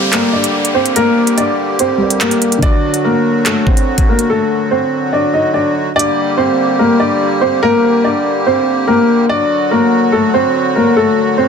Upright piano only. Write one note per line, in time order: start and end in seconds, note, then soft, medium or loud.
0.00 0.10 C4 medium
0.00 0.10 C5 medium
0.13 0.30 A#3 medium
0.13 0.29 A#4 medium
0.33 0.73 D4 medium
0.33 0.73 D5 medium
0.74 0.92 C4 medium
0.74 0.91 C5 medium
0.96 1.36 A#3 medium
0.96 1.35 A#4 loud
1.38 1.77 D4 medium
1.38 1.77 D5 medium
1.80 2.19 C4 medium
1.80 2.19 C5 medium
2.21 2.61 A#3 medium
2.21 2.60 A#4 medium
2.63 3.02 D4 medium
2.63 3.02 D5 loud
3.05 3.44 A#3 medium
3.05 3.44 A#4 medium
3.46 3.63 A3 medium
3.46 3.62 A4 medium
3.67 4.06 C4 medium
3.67 4.06 C5 medium
4.09 4.26 A#3 medium
4.09 4.25 A#4 medium
4.30 4.69 A3 medium
4.30 4.69 A4 medium
4.71 5.11 C4 medium
4.71 5.10 C5 medium
5.13 5.30 D4 medium
5.13 5.29 D5 medium
5.33 5.51 D#4 medium
5.33 5.50 D#5 medium
5.54 5.71 D4 medium
5.54 5.71 D5 medium
5.96 6.35 D4 medium
5.96 6.35 D5 loud
6.37 6.77 C4 medium
6.37 6.77 C5 medium
6.79 6.96 A#3 medium
6.79 6.96 A#4 medium
7.00 7.39 D4 medium
7.00 7.39 D5 medium
7.41 7.59 C4 medium
7.41 7.58 C5 medium
7.63 8.02 A#3 medium
7.63 8.02 A#4 loud
8.04 8.44 D4 medium
8.04 8.43 D5 medium
8.46 8.86 C4 medium
8.46 8.85 C5 medium
8.88 9.27 A#3 medium
8.88 9.27 A#4 medium
9.29 9.69 D4 medium
9.29 9.69 D5 loud
9.71 10.11 A#3 medium
9.71 10.10 A#4 medium
10.12 10.30 A3 medium
10.12 10.29 A4 medium
10.34 10.73 C4 medium
10.34 10.73 C5 medium
10.76 10.93 A#3 medium
10.76 10.92 A#4 medium
10.96 11.36 A3 medium
10.96 11.35 A4 loud
11.38 11.48 C4 medium
11.38 11.48 C5 medium